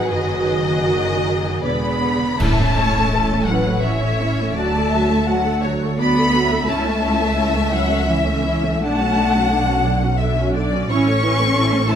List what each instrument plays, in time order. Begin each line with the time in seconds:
Already playing: double bass section G#1, cello section F#3, viola section F#3, violin section G#4 B4 F#5
0.09 double bass section F#1, cello section D#3, viola section F#4, violin section D#5
0.84 violin section A#4
1.62 double bass section E1, cello section D3 B3, viola section B3 G#4, violin section B4 D5 B5
2.40 double bass section A1, cello section A3, viola section C#4 E4, violin section E5 A5, concert bass drum, crash
2.61 viola section A3 C#4
2.76 viola section C#4 E4, violin section C#5
2.97 viola section A3 C#4
3.13 viola section C#4 E4, violin section A4
3.33 viola section A3 C#4
3.46 cello section F#3, violin section B4 F#5
3.51 viola section C#4 E4
3.68 viola section A3 C#4
3.82 cello section E3, viola section C#4 E4, violin section C#5 E5
4.04 viola section A3 C#4
4.21 viola section C#4 E4
4.41 viola section A3 C#4
4.55 double bass section D2, viola section F#3 F#4, cello section A3, violin section D5 A5
4.78 viola section A3 A4
4.91 viola section F#4, violin section E5
4.95 viola section F#3
5.11 viola section A3 A4
5.27 viola section F#3 F#4, violin section F#5
5.47 viola section A3 A4
5.62 viola section F#3 F#4, violin section C#5
5.83 viola section A3 A4
5.99 viola section F#3 F#4, cello section B3, violin section D5 B5
6.18 viola section A3 A4
6.33 viola section F#3 F#4, violin section E5
6.51 viola section A3 A4
6.69 double bass section C#2, cello section A3, viola section C#4 E4, violin section A5
6.85 viola section A3 C#4
7.03 viola section C#4 E4
7.20 viola section A3 C#4
7.37 viola section C#4 E4
7.54 viola section A3 C#4
7.70 cello section F#3, viola section C#4 E4, violin section F#5
7.89 viola section A3 C#4
8.07 cello section E3, viola section C#4 E4, violin section E5
8.26 viola section A3 C#4
8.44 viola section C#4 E4
8.64 viola section A3 C#4
8.82 double bass section B1, viola section D3 D4, cello section A3, violin section F#5 A5
9.00 viola section F#3 C#4
9.18 viola section D3 D4
9.36 viola section F#3 C#4
9.53 viola section D3 D4
9.69 viola section F#3 C#4
9.85 viola section D3 D4
10.03 viola section F#3 C#4
10.18 viola section D3 D4, violin section E5
10.38 viola section F#3 C#4
10.54 viola section D3 D4, violin section D5
10.72 viola section F#3 C#4
10.88 double bass section A1, cello section C#4, viola section C#4 E4, violin section C#5 C#6
11.07 viola section A3 C#4
11.23 viola section C#4 E4, violin section B4
11.40 viola section A3 C#4
11.55 viola section C#4 E4, violin section A4
11.72 viola section A3 C#4
11.88 cello section A3, viola section C#4 E4, violin section C#5 A5